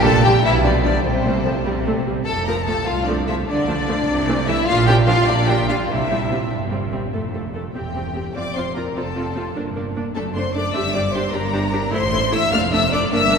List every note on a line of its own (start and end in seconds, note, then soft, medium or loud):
0.00 0.34 A#1 loud
0.00 0.34 A#2 loud
0.00 0.24 A4 loud
0.04 0.11 D3 medium
0.04 0.11 G3 medium
0.04 0.24 A5 loud
0.23 0.32 D3 medium
0.23 0.32 G3 medium
0.23 0.43 G4 loud
0.23 0.44 G5 loud
0.43 0.95 B1 loud
0.43 0.95 B2 medium
0.43 0.63 E4 loud
0.43 0.53 E5 loud
0.64 0.71 F3 medium
0.64 0.71 G3 medium
0.64 0.72 D4 medium
0.64 0.82 D5 medium
0.84 0.92 F3 medium
0.84 0.92 G3 medium
0.84 0.92 D4 medium
0.84 1.04 D5 medium
1.04 1.56 C2 medium
1.04 1.56 C3 medium
1.04 2.04 C4 medium
1.04 2.04 C5 medium
1.26 1.32 F3 medium
1.26 1.32 A3 medium
1.46 1.52 F3 medium
1.46 1.52 A3 medium
1.66 2.17 C2 medium
1.66 2.17 C3 medium
1.66 1.74 G3 medium
1.87 1.95 A3 medium
2.08 2.16 G3 medium
2.26 2.78 F1 medium
2.26 2.77 F2 medium
2.26 2.45 A4 loud
2.26 2.45 A5 medium
2.46 2.54 F3 medium
2.46 2.54 A3 medium
2.46 2.55 A#4 medium
2.46 2.66 A#5 loud
2.65 2.75 F3 medium
2.65 2.74 A3 medium
2.65 2.87 A4 medium
2.65 2.86 A5 loud
2.86 3.37 C2 medium
2.86 3.38 C2 medium
2.86 3.07 F4 medium
2.86 3.07 F5 loud
3.07 3.14 F3 medium
3.07 3.14 A3 medium
3.07 3.27 D4 medium
3.07 3.27 D5 medium
3.26 3.35 F3 medium
3.26 3.35 A3 medium
3.26 3.34 E4 medium
3.26 3.35 E5 medium
3.46 3.97 D2 medium
3.46 3.97 D3 medium
3.46 4.44 D4 medium
3.46 4.45 D5 loud
3.68 3.74 F3 medium
3.68 3.74 A3 medium
3.88 3.94 F3 medium
3.88 3.94 A3 medium
4.07 4.57 C2 medium
4.07 4.57 C3 medium
4.28 4.34 E3 medium
4.28 4.34 A3 medium
4.46 4.54 E3 medium
4.46 4.54 A3 medium
4.46 4.66 E4 loud
4.46 4.67 E5 loud
4.66 5.18 A#1 loud
4.66 5.18 A#2 medium
4.66 4.87 F4 loud
4.66 4.87 F5 loud
4.86 4.94 F3 medium
4.86 4.94 D4 medium
4.86 4.94 G4 loud
4.86 4.95 G5 loud
5.06 5.14 F3 medium
5.06 5.14 D4 medium
5.06 5.27 F4 loud
5.06 5.27 F5 loud
5.27 5.80 A#1 loud
5.27 5.79 A#2 loud
5.27 5.48 D4 loud
5.27 5.48 D5 loud
5.48 5.54 G3 medium
5.48 5.54 D4 medium
5.48 5.68 G4 medium
5.48 5.68 G5 loud
5.68 5.75 G3 medium
5.68 5.75 D4 medium
5.68 5.89 F4 medium
5.68 5.76 F5 loud
5.88 6.42 C2 medium
5.88 6.41 C3 medium
5.88 6.52 E4 medium
5.88 6.50 E5 medium
6.10 6.17 G3 medium
6.10 6.17 C4 medium
6.30 6.37 G3 soft
6.30 6.37 C4 medium
6.52 7.04 G1 medium
6.52 7.04 G2 medium
6.72 6.78 G3 soft
6.72 6.78 C4 medium
6.92 6.99 G3 soft
6.92 6.99 C4 soft
7.13 7.68 F1 medium
7.13 7.68 F2 soft
7.13 7.21 A3 soft
7.13 7.21 A4 soft
7.35 7.43 A3 soft
7.35 7.43 A4 soft
7.54 7.63 A3 soft
7.54 7.62 A4 soft
7.74 8.28 E1 medium
7.74 8.28 E2 medium
7.74 7.83 C4 soft
7.74 7.83 G4 soft
7.74 8.31 G4 medium
7.74 8.31 G5 medium
7.95 8.03 C4 soft
7.95 8.03 G4 soft
8.15 8.23 C4 soft
8.15 8.23 G4 soft
8.34 8.88 F1 medium
8.34 8.88 F2 medium
8.34 8.43 C4 soft
8.34 8.43 F4 soft
8.34 8.55 D5 medium
8.34 8.54 D6 medium
8.55 8.64 C4 soft
8.55 8.64 F4 soft
8.55 8.75 C5 medium
8.55 8.75 C6 medium
8.75 8.84 C4 soft
8.75 8.84 F4 soft
8.75 8.95 A#4 medium
8.75 8.83 A#5 medium
8.95 9.48 F1 medium
8.95 9.49 F2 medium
8.95 9.04 C4 medium
8.95 9.04 F4 medium
8.95 9.56 A4 medium
8.95 9.54 A5 medium
9.16 9.25 C4 soft
9.16 9.24 F4 soft
9.35 9.44 C4 medium
9.35 9.43 F4 medium
9.55 10.08 G1 medium
9.55 10.08 G2 medium
9.55 9.64 A#3 medium
9.55 9.64 D4 medium
9.76 9.84 A#3 medium
9.76 9.84 D4 soft
9.96 10.04 A#3 medium
9.96 10.04 D4 medium
10.15 10.68 F#1 medium
10.15 10.68 F#2 medium
10.15 10.23 A3 medium
10.15 10.23 D4 medium
10.15 10.24 A4 medium
10.15 10.23 A5 medium
10.34 10.43 A3 medium
10.34 10.43 D4 medium
10.34 10.55 C5 medium
10.34 10.54 C6 medium
10.55 10.63 A3 medium
10.55 10.63 D4 medium
10.55 10.75 D5 medium
10.55 10.75 D6 medium
10.74 11.27 G1 medium
10.74 11.27 G2 medium
10.74 10.83 D4 medium
10.74 10.83 G4 medium
10.74 10.94 E5 loud
10.74 10.94 E6 loud
10.94 11.03 D4 medium
10.94 11.02 G4 medium
10.94 11.14 D5 medium
10.94 11.14 D6 medium
11.14 11.22 D4 medium
11.14 11.22 G4 medium
11.14 11.34 C5 medium
11.14 11.34 C6 loud
11.33 11.86 G1 medium
11.33 11.86 G2 medium
11.33 11.41 D4 medium
11.33 11.41 G4 medium
11.33 11.93 A#4 medium
11.33 11.94 A#5 loud
11.52 11.61 D4 medium
11.52 11.60 G4 medium
11.73 11.81 D4 medium
11.73 11.81 G4 medium
11.93 12.46 A1 loud
11.93 12.46 A2 medium
11.93 12.01 A3 medium
11.93 12.01 E4 medium
11.93 12.33 C5 loud
11.93 12.32 C6 loud
12.13 12.21 A3 medium
12.13 12.21 E4 medium
12.32 12.40 A3 medium
12.32 12.40 E4 medium
12.32 12.53 E5 loud
12.32 12.53 E6 loud
12.52 13.05 F1 medium
12.52 13.05 F2 medium
12.52 12.60 A3 medium
12.52 12.60 D4 medium
12.52 12.73 F5 loud
12.52 12.61 F6 loud
12.72 12.81 A3 medium
12.72 12.81 D4 medium
12.72 12.93 E5 medium
12.72 12.92 E6 loud
12.91 13.00 A3 medium
12.91 13.00 D4 medium
12.91 13.12 D5 medium
12.91 13.01 D6 loud
13.11 13.38 G1 loud
13.11 13.38 G2 medium
13.11 13.19 A#3 medium
13.11 13.19 D4 medium
13.11 13.38 E5 loud
13.11 13.38 E6 loud
13.31 13.38 A#3 medium
13.31 13.38 D4 medium